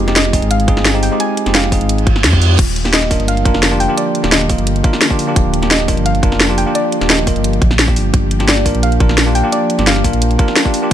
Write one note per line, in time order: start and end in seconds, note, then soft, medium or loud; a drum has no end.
0.00 0.41 F1 loud
0.00 2.55 G#3 medium
0.00 2.55 F4 medium
0.07 0.31 G#3 medium
0.07 0.31 C4 medium
0.07 0.32 D#4 medium
0.07 0.32 G4 medium
0.07 snare soft
0.07 closed hi-hat soft
0.16 0.52 D#5 medium
0.16 snare loud
0.16 closed hi-hat medium
0.25 snare soft
0.33 0.66 G#3 medium
0.33 0.66 C4 medium
0.33 0.67 D#4 medium
0.33 0.67 G#4 medium
0.33 kick medium
0.33 open hi-hat medium
0.42 0.69 G#1 loud
0.42 closed hi-hat soft
0.51 1.04 F5 loud
0.51 closed hi-hat loud
0.60 closed hi-hat soft
0.67 1.10 G1 loud
0.67 0.92 G#3 loud
0.67 0.92 C4 medium
0.67 0.92 D#4 medium
0.67 0.93 G#4 loud
0.67 kick loud
0.67 closed hi-hat medium
0.77 snare medium
0.85 snare loud
0.85 closed hi-hat loud
0.94 1.09 G#3 medium
0.94 1.09 C4 medium
0.94 1.10 D#4 medium
0.94 1.10 G4 loud
1.03 1.21 G5 loud
1.03 open hi-hat medium
1.11 1.44 G#3 medium
1.11 1.44 C4 medium
1.11 1.44 D#4 medium
1.11 1.45 G4 loud
1.20 1.52 G#5 loud
1.20 closed hi-hat loud
1.37 closed hi-hat medium
1.46 1.80 F1 medium
1.46 1.70 G#3 medium
1.46 1.70 C4 medium
1.46 1.70 D#4 medium
1.46 1.70 G4 medium
1.46 snare soft
1.46 closed hi-hat soft
1.55 2.37 F5 medium
1.55 snare loud
1.55 closed hi-hat loud
1.64 snare soft
1.71 2.05 G#3 medium
1.71 2.05 C4 medium
1.71 2.05 D#4 medium
1.71 2.05 G#4 medium
1.71 kick medium
1.71 open hi-hat medium
1.81 2.17 G#1 loud
1.81 closed hi-hat soft
1.89 closed hi-hat loud
1.89 reverse cymbal medium
1.98 closed hi-hat soft
2.07 kick loud
2.07 closed hi-hat medium
2.16 2.26 G1 medium
2.16 snare medium
2.24 2.57 F2 loud
2.24 snare loud
2.24 closed hi-hat loud
2.32 2.57 G#3 medium
2.32 2.58 C4 medium
2.32 2.58 D#4 medium
2.32 2.58 G4 medium
2.32 kick medium
2.42 open hi-hat medium
2.59 3.18 D#1 loud
2.59 7.92 D3 medium
2.59 10.93 F3 medium
2.59 10.93 G4 medium
2.59 kick loud
2.59 closed hi-hat loud
2.59 crash medium
2.76 closed hi-hat medium
2.84 3.08 A#3 medium
2.84 3.09 D4 medium
2.84 3.09 F4 medium
2.84 3.09 G4 medium
2.84 snare soft
2.84 closed hi-hat soft
2.94 3.29 D#5 medium
2.94 snare loud
2.94 closed hi-hat loud
3.03 snare soft
3.10 3.43 A#3 medium
3.10 3.44 D4 medium
3.10 3.44 F4 medium
3.10 3.44 A#4 medium
3.10 kick medium
3.10 open hi-hat medium
3.20 3.47 G1 loud
3.20 closed hi-hat soft
3.28 3.77 F5 loud
3.28 closed hi-hat loud
3.37 closed hi-hat soft
3.45 3.88 F1 medium
3.45 3.69 A#3 medium
3.45 3.70 D4 medium
3.45 3.70 F4 medium
3.45 3.70 A#4 loud
3.45 kick loud
3.45 closed hi-hat medium
3.54 snare medium
3.63 snare loud
3.63 closed hi-hat loud
3.71 3.87 A#3 medium
3.71 3.87 D4 medium
3.71 3.87 F4 medium
3.71 3.87 G4 loud
3.80 3.88 G5 loud
3.80 open hi-hat medium
3.88 4.21 A#3 medium
3.88 4.21 D4 medium
3.88 4.22 F4 medium
3.88 4.22 G4 loud
3.97 4.33 D5 loud
3.97 closed hi-hat loud
4.15 closed hi-hat medium
4.23 4.57 D#1 medium
4.23 4.47 A#3 medium
4.23 4.47 D4 medium
4.23 4.48 F4 medium
4.23 4.48 G4 medium
4.23 snare soft
4.23 closed hi-hat soft
4.32 5.15 D#5 medium
4.32 snare loud
4.32 closed hi-hat medium
4.41 snare soft
4.49 4.82 D3 medium
4.49 4.82 A#3 medium
4.49 4.83 F4 medium
4.49 4.83 A#4 medium
4.49 kick medium
4.49 open hi-hat medium
4.58 4.83 G1 loud
4.58 closed hi-hat soft
4.67 closed hi-hat loud
4.76 closed hi-hat soft
4.83 5.08 A#3 medium
4.83 5.08 D4 medium
4.83 5.08 F4 medium
4.83 5.09 A#4 loud
4.83 kick loud
4.83 closed hi-hat medium
4.93 snare medium
5.02 snare loud
5.02 closed hi-hat medium
5.10 5.25 A#3 loud
5.10 5.26 D4 medium
5.10 5.26 F4 medium
5.10 5.26 G4 loud
5.10 kick medium
5.19 open hi-hat medium
5.27 5.60 A#3 medium
5.27 5.60 D4 medium
5.27 5.60 F4 medium
5.27 5.61 G4 loud
5.36 5.96 D#1 loud
5.36 kick loud
5.36 closed hi-hat medium
5.54 closed hi-hat medium
5.62 5.86 A#3 medium
5.62 5.86 D4 medium
5.62 5.86 F4 medium
5.62 5.87 G4 medium
5.62 snare soft
5.62 closed hi-hat soft
5.71 6.07 D#5 medium
5.71 snare loud
5.71 closed hi-hat medium
5.80 snare soft
5.88 6.21 A#3 medium
5.88 6.21 D4 medium
5.88 6.21 F4 medium
5.88 6.22 A#4 medium
5.88 kick medium
5.88 open hi-hat medium
5.97 6.24 G1 loud
5.97 closed hi-hat soft
6.06 6.59 F5 loud
6.06 closed hi-hat medium
6.15 closed hi-hat soft
6.22 6.65 F1 loud
6.22 6.47 A#3 medium
6.22 6.47 D4 medium
6.22 6.47 F4 medium
6.22 6.47 A#4 loud
6.22 kick loud
6.22 closed hi-hat medium
6.32 snare medium
6.40 snare loud
6.40 closed hi-hat medium
6.49 6.64 A#3 medium
6.49 6.64 D4 medium
6.49 6.65 F4 medium
6.49 6.65 G4 loud
6.58 6.66 G5 loud
6.58 open hi-hat medium
6.66 6.99 A#3 medium
6.66 6.99 D4 medium
6.66 6.99 F4 medium
6.66 7.00 G4 loud
6.75 7.11 D5 loud
6.75 closed hi-hat medium
6.92 closed hi-hat medium
7.01 7.35 D#1 medium
7.01 7.25 A#3 medium
7.01 7.25 D4 medium
7.01 7.25 F4 medium
7.01 7.25 G4 medium
7.01 snare soft
7.01 closed hi-hat soft
7.10 7.92 D#5 medium
7.10 snare loud
7.10 closed hi-hat medium
7.19 snare soft
7.26 7.60 D3 medium
7.26 7.60 A#3 medium
7.26 7.60 F4 medium
7.26 7.60 A#4 medium
7.26 kick medium
7.26 open hi-hat medium
7.36 7.60 G1 loud
7.36 closed hi-hat soft
7.44 closed hi-hat medium
7.53 closed hi-hat soft
7.62 7.98 A#1 loud
7.62 kick loud
7.62 closed hi-hat medium
7.71 snare medium
7.79 snare loud
7.79 closed hi-hat medium
7.87 8.37 A#3 medium
7.87 8.38 D4 medium
7.87 8.38 F4 medium
7.87 8.39 G4 medium
7.87 kick medium
7.96 8.12 G1 medium
7.96 10.93 A#3 medium
7.96 open hi-hat medium
8.14 8.73 G1 loud
8.14 kick loud
8.14 closed hi-hat medium
8.31 closed hi-hat medium
8.39 8.63 A#3 medium
8.39 8.64 D4 medium
8.39 8.64 F4 medium
8.39 8.64 G4 medium
8.39 snare soft
8.39 closed hi-hat soft
8.48 8.84 D5 medium
8.48 snare loud
8.48 closed hi-hat medium
8.57 snare soft
8.65 8.98 A#3 medium
8.65 8.99 D4 medium
8.65 8.99 F4 medium
8.65 8.99 A#4 medium
8.65 kick medium
8.65 open hi-hat medium
8.75 8.99 A#1 loud
8.75 closed hi-hat soft
8.83 9.37 F5 loud
8.83 closed hi-hat medium
8.92 closed hi-hat soft
9.00 9.43 A#1 medium
9.00 9.24 A#3 medium
9.00 9.24 D4 medium
9.00 9.25 F4 medium
9.00 9.25 A#4 loud
9.00 kick loud
9.00 closed hi-hat medium
9.09 snare medium
9.18 snare loud
9.18 closed hi-hat medium
9.26 9.42 A#3 medium
9.26 9.42 D4 medium
9.26 9.42 F4 medium
9.26 9.42 G4 loud
9.35 9.53 G5 loud
9.35 open hi-hat medium
9.43 9.76 A#3 medium
9.43 9.76 D4 medium
9.43 9.77 F4 medium
9.43 9.77 G4 loud
9.52 9.88 D5 loud
9.52 closed hi-hat medium
9.70 closed hi-hat medium
9.78 10.12 G1 medium
9.78 10.02 A#3 medium
9.78 10.02 D4 medium
9.78 10.03 F4 medium
9.78 10.03 G4 medium
9.78 snare soft
9.78 closed hi-hat soft
9.87 10.70 F5 medium
9.87 snare loud
9.87 closed hi-hat medium
9.96 snare soft
10.04 10.37 A#3 medium
10.04 10.37 D4 medium
10.04 10.38 F4 medium
10.04 10.38 A#4 medium
10.04 kick medium
10.04 open hi-hat medium
10.13 10.38 A#1 loud
10.13 closed hi-hat soft
10.22 closed hi-hat medium
10.31 closed hi-hat soft
10.38 10.63 A#3 loud
10.38 10.63 D4 medium
10.38 10.63 F4 medium
10.38 10.64 A#4 loud
10.38 kick loud
10.38 closed hi-hat medium
10.48 snare medium
10.56 snare loud
10.56 closed hi-hat medium
10.65 10.80 A#3 loud
10.65 10.80 D4 medium
10.65 10.81 F4 medium
10.65 10.81 G4 loud
10.65 kick medium
10.74 open hi-hat medium
10.82 10.93 A#3 medium
10.82 10.93 D4 medium
10.82 10.93 F4 medium
10.82 10.93 G4 loud